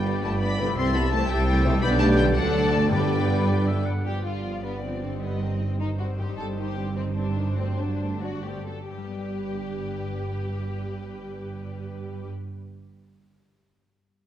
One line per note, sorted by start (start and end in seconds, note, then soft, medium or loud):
0.00 0.18 G1 medium
0.00 0.70 G2 medium
0.00 0.20 G3 medium
0.00 0.72 B3 soft
0.00 0.74 D4 soft
0.00 0.72 G4 soft
0.00 0.79 D5 medium
0.00 0.20 G5 medium
0.00 0.73 B5 medium
0.05 0.13 D3 medium
0.05 0.12 G3 soft
0.05 0.21 B3 soft
0.05 0.24 D4 soft
0.05 0.12 D4 medium
0.05 0.24 G4 soft
0.05 0.12 B4 medium
0.05 0.24 D5 soft
0.23 0.71 G1 medium
0.23 0.42 G3 medium
0.23 0.42 A3 medium
0.23 0.40 B3 medium
0.23 0.42 B4 medium
0.23 0.42 G5 medium
0.23 0.31 A5 medium
0.41 0.58 B3 medium
0.41 0.78 B3 medium
0.41 0.58 D4 medium
0.41 0.58 G4 soft
0.41 0.58 D5 medium
0.41 0.77 B5 medium
0.59 1.75 C3 medium
0.59 0.66 D3 medium
0.59 0.77 G3 medium
0.59 0.66 G3 medium
0.59 0.77 B3 medium
0.59 0.66 D4 medium
0.59 0.77 B4 medium
0.59 0.66 B4 medium
0.59 0.77 G5 medium
0.64 1.78 A3 soft
0.68 1.80 E4 soft
0.73 0.94 A3 medium
0.73 1.77 G4 soft
0.73 0.94 G4 medium
0.73 0.94 C5 medium
0.73 1.28 A6 medium
0.77 1.24 C2 medium
0.77 0.95 C4 medium
0.77 0.94 E4 medium
0.77 1.29 E5 medium
0.77 0.95 C6 medium
0.94 1.12 G3 medium
0.94 1.02 B3 medium
0.94 1.12 G4 medium
0.94 1.13 A4 medium
0.94 1.13 E5 medium
0.94 1.13 B5 loud
1.11 1.19 E3 medium
1.11 1.30 A3 medium
1.11 1.19 A3 medium
1.11 1.20 C4 medium
1.11 1.30 E4 medium
1.11 1.30 G4 medium
1.11 1.30 C5 medium
1.11 1.20 C5 medium
1.11 1.30 A5 loud
1.29 1.77 C2 medium
1.29 1.48 G3 medium
1.29 1.82 G3 loud
1.29 1.47 G4 medium
1.29 1.48 A4 medium
1.29 1.48 E5 medium
1.29 1.81 E5 medium
1.29 1.82 G5 loud
1.29 1.81 A6 medium
1.47 1.64 A3 medium
1.47 1.64 E4 medium
1.47 1.64 G4 medium
1.47 1.64 C5 medium
1.65 2.29 B2 medium
1.65 1.72 E3 medium
1.65 1.81 G3 medium
1.65 1.72 A3 medium
1.65 1.71 C4 medium
1.65 1.83 G4 medium
1.65 1.83 A4 medium
1.65 1.71 C5 loud
1.65 1.83 E5 medium
1.69 2.31 B3 medium
1.74 2.26 D4 medium
1.78 2.32 G3 medium
1.78 2.32 D4 medium
1.78 2.36 G4 medium
1.78 2.32 G4 medium
1.78 2.32 D5 medium
1.78 2.35 D5 medium
1.78 1.89 B5 loud
1.82 2.38 B1 loud
1.82 2.33 B1 medium
1.82 2.33 D3 loud
1.82 2.33 G3 loud
1.82 2.01 B3 loud
1.82 2.33 D4 medium
1.82 2.33 B4 medium
1.82 2.35 G6 medium
2.00 2.18 A3 loud
2.00 2.07 A5 loud
2.17 2.85 D3 medium
2.17 2.26 G3 medium
2.17 2.25 G5 loud
2.23 2.87 A3 medium
2.27 2.82 D4 medium
2.32 2.91 A4 medium
2.32 2.92 A4 medium
2.32 2.72 F#5 loud
2.36 2.92 D2 medium
2.36 2.93 D2 medium
2.36 2.91 D3 medium
2.36 2.73 F#3 medium
2.36 2.91 A3 medium
2.36 2.90 D4 medium
2.36 2.91 A4 medium
2.36 2.91 D5 medium
2.36 2.91 A6 medium
2.73 3.86 G2 medium
2.73 2.92 A3 medium
2.73 2.92 A5 medium
2.79 3.90 B3 soft
2.83 3.95 D4 soft
2.87 3.99 G4 soft
2.91 3.85 G1 medium
2.91 3.85 G2 medium
2.91 3.44 G2 loud
2.91 3.83 D3 medium
2.91 3.85 G3 medium
2.91 3.85 B3 medium
2.91 3.83 D4 medium
2.91 3.85 G4 medium
2.91 3.85 B4 medium
2.91 3.83 D5 medium
2.91 3.43 D5 medium
2.91 3.83 G5 medium
2.91 3.85 B5 medium
3.47 3.68 D5 medium
3.67 3.87 E5 medium
3.86 5.03 G2 soft
3.86 4.05 F#5 medium
3.92 5.17 B3 soft
3.96 5.19 D4 soft
4.00 5.16 G4 soft
4.04 6.34 G1 soft
4.04 6.34 G2 soft
4.04 4.23 F3 soft
4.04 4.23 B3 soft
4.04 4.23 G4 medium
4.04 5.18 D5 soft
4.25 4.44 G3 soft
4.25 4.44 D4 soft
4.25 4.63 F4 medium
4.45 4.64 F3 soft
4.45 4.64 B3 soft
4.64 4.83 G3 soft
4.64 4.83 B3 medium
4.64 4.83 D4 soft
4.83 5.01 F3 soft
4.83 5.01 B3 soft
4.83 5.21 C4 soft
5.02 6.18 G2 soft
5.02 5.21 G3 soft
5.02 5.22 D4 soft
5.09 6.22 C4 soft
5.13 6.27 D#4 soft
5.18 6.31 G4 soft
5.22 5.40 G3 soft
5.22 5.41 B3 medium
5.22 5.40 C4 soft
5.22 5.80 D#5 soft
5.41 5.60 D#3 soft
5.41 5.80 C4 medium
5.41 5.60 D#4 soft
5.60 5.79 G3 soft
5.60 5.79 C4 soft
5.80 5.99 D#3 soft
5.80 5.99 D#4 soft
5.80 5.87 D#4 medium
5.80 6.94 C5 soft
5.99 6.17 G3 soft
5.99 6.17 C4 soft
5.99 6.07 F#4 medium
6.18 7.39 G2 soft
6.18 6.37 D#3 soft
6.18 6.38 D#4 soft
6.18 6.37 G4 soft
6.24 7.43 C4 soft
6.28 7.55 D#4 soft
6.32 7.57 G4 soft
6.37 8.64 G1 medium
6.37 8.64 G2 medium
6.37 6.56 G3 soft
6.37 6.56 C4 soft
6.37 6.45 A4 medium
6.57 6.77 D#3 soft
6.57 6.77 D#4 soft
6.57 6.96 G4 medium
6.77 6.97 G3 soft
6.77 6.97 C4 soft
6.96 7.17 D#3 soft
6.96 7.05 C4 medium
6.96 7.17 D#4 soft
6.96 8.20 C5 medium
7.16 7.36 G3 soft
7.16 7.36 C4 soft
7.16 7.57 D4 medium
7.37 8.83 G2 soft
7.37 7.58 D#3 soft
7.37 7.58 D#4 soft
7.45 8.86 C4 soft
7.49 9.10 D4 soft
7.53 8.90 F#4 soft
7.58 7.78 A3 soft
7.58 7.79 C4 medium
7.58 7.78 C4 soft
7.79 8.01 F#3 soft
7.79 8.23 D4 medium
7.79 8.01 D4 soft
8.01 8.23 A3 soft
8.01 8.23 C4 soft
8.22 8.45 F#3 soft
8.22 8.45 D4 soft
8.22 8.45 F#4 medium
8.22 8.57 D5 soft
8.44 8.66 A3 soft
8.44 8.66 C4 soft
8.44 8.68 G4 medium
8.67 8.90 F#3 soft
8.67 8.90 D4 soft
8.67 8.90 A4 soft
8.90 12.28 G1 soft
8.90 12.98 G2 soft
8.90 12.28 G2 soft
8.90 12.28 G3 soft
8.90 12.28 G4 soft
8.90 12.28 B4 soft
8.97 13.02 G3 soft
9.04 13.05 B3 soft
9.11 13.09 D4 soft
9.18 13.12 G4 soft
9.25 13.16 D5 soft